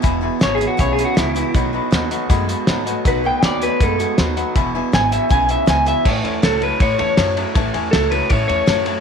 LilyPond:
<<
  \new Staff \with { instrumentName = "Upright piano" } { \time 4/4 \key e \major \tempo 4 = 160 << { r1 | r4. fis''8 a''4 b''4 | r1 | r1 |
\key a \major r1 | r1 | } \\ { <e'' gis'' b''>8 <e'' gis'' b''>8 <e'' gis''>8 <e'' gis'' b''>8 <e'' gis'' b''>8 <e'' gis'' b''>8 <e'' gis'' b''>8 <e'' gis'' b''>8 | <dis'' fis'' b''>8 <dis'' fis'' b''>8 <dis'' fis'' b''>8 <dis'' b''>8 <dis'' fis'' b''>8 <dis'' fis'' b''>8 <dis'' fis''>8 <dis'' fis'' b''>8 | <dis'' fis'' b''>8 <dis'' fis'' b''>8 <dis'' fis'' b''>8 <dis'' fis'' b''>8 <dis'' fis'' b''>8 <dis'' fis'' b''>8 <dis'' fis'' b''>8 <dis'' fis'' b''>8 | <e'' gis'' b''>8 <e'' gis'' b''>8 <e'' gis'' b''>8 <e'' gis'' b''>8 <e'' gis'' b''>8 <e'' gis'' b''>8 <e'' b''>8 <e'' gis'' b''>8 |
<cis'' e'' a''>8 <cis'' e'' gis''>8 <cis'' e'' a''>8 <cis'' e'' a''>8 <cis'' e'' b''>8 <cis'' e'' a''>8 <cis'' e'' a''>8 <cis'' e'' a''>8 | <cis'' e'' a''>8 <cis'' e'' gis''>8 <cis'' e'' a''>8 <cis'' e'' a''>8 <cis'' e'' a''>8 <cis'' e'' a''>8 <cis'' e'' a''>8 <cis'' e'' a''>8 | } >> }
  \new Staff \with { instrumentName = "Clean electric guitar" } { \time 4/4 \key e \major r4 \tuplet 3/2 { cis''8 gis'8 fis'8 cis''8 gis'8 fis'8 } e'4 | r1 | b'8 g''8 d''8 b'8 a'4 r4 | r4 gis''8 e''8 gis''8 e''8 gis''8 e''8 |
\key a \major r4 a'8 b'8 cis''8 cis''4 r8 | r4 a'8 b'8 cis''8 cis''4 r8 | }
  \new Staff \with { instrumentName = "Steel-string acoustic guitar" } { \time 4/4 \key e \major <e, b, e gis b e'>8 <e gis b e'>8 <e gis b e'>8 <e gis b e'>8 <e, b, e gis b e'>8 <e gis b e'>8 <e gis b e'>8 <e gis b e'>8 | <b, dis a b fis'>8 <a b fis'>8 <dis a b fis'>8 <a b fis'>8 <b, dis a b fis'>8 <a b fis'>8 <dis a b fis'>8 <a b fis'>8 | <b, dis a b fis'>8 <a b fis'>8 <a b fis'>8 <a b fis'>8 <b, dis a b fis'>8 <a b fis'>8 <dis a b fis'>8 <a b fis'>8 | <e, b, e gis b e'>8 <e gis b e'>8 <e gis e'>8 <e gis b e'>8 <e, b, e gis b e'>8 <e gis b e'>8 <e gis b e'>8 <e gis b e'>8 |
\key a \major <a, e a cis' e'>8 <a cis' e'>8 <a, e a cis' e'>8 <a cis' e'>8 <e a cis' e'>8 <a cis' e'>8 <a, e a cis' e'>8 <a cis' e'>8 | <a, e a cis' e'>8 <a cis' e'>8 <a, e a cis' e'>8 <a cis' e'>8 <e a cis' e'>8 <a cis' e'>8 <a, e a cis' e'>8 <a cis' e'>8 | }
  \new Staff \with { instrumentName = "Clean electric guitar" } { \clef bass \time 4/4 \key e \major <e, b,>8 <e, b,>8 <e, b,>8 <e, b,>8 <e, cis>8 <e, cis>8 <e, b,>8 <e, b,>8 | <b, fis>8 <b, fis>8 <b, fis>8 <b, fis>8 <b, gis>8 <b, gis>8 <b, fis>8 <b, fis>8 | <b, fis>8 <b, fis>8 <b, fis>8 <b, fis>8 <b, gis>8 <b, gis>8 <b, fis>8 <b, fis>8 | <e, b,>8 <e, b,>8 <e, b,>8 <e, b,>8 <e, cis>8 <e, cis>8 <e, b,>8 <e, b,>8 |
\key a \major <a, e>4 <a, fis>8 <a, fis>8 <a, e>4 <a, fis>8 <a, fis>8 | <a, e>4 <a, fis>8 <a, fis>8 <a, e>4 <a, fis>8 <a, fis>8 | }
  \new Staff \with { instrumentName = "Upright bass" } { \clef bass \time 4/4 \key e \major e,,4 gis,,4 b,,4 cis,4 | b,,4 dis,4 fis,4 gis,4 | b,,4 dis,4 fis,4 dis,4 | e,,4 gis,,4 b,,4 cis,4 |
\key a \major a,,8 e,8 cis,4 a,,8 e,8 fis,4 | a,,8 e,8 cis,4 a,,8 e,8 fis,4 | }
  \new DrumStaff \with { instrumentName = "Drums" } \drummode { \time 4/4 <hh bd>4 <hh sn>8 hh8 <hh bd>8 hh8 <hh sn>8 hh8 | <hh bd>4 <hh sn>8 hh8 <hh bd>8 hh8 <hh sn>8 hh8 | <hh bd>4 <hh sn>8 hh8 <hh bd>8 hh8 <hh sn>8 hh8 | <hh bd>4 <hh sn>8 hh8 <hh bd>8 hh8 <hh sn>8 hh8 |
<cymc bd>8 cymr8 <cymr sn>8 cymr8 <bd cymr>8 cymr8 <cymr sn>8 cymr8 | <bd cymr>8 cymr8 <cymr sn>8 cymr8 <bd cymr>8 cymr8 <cymr sn>8 cymr8 | }
>>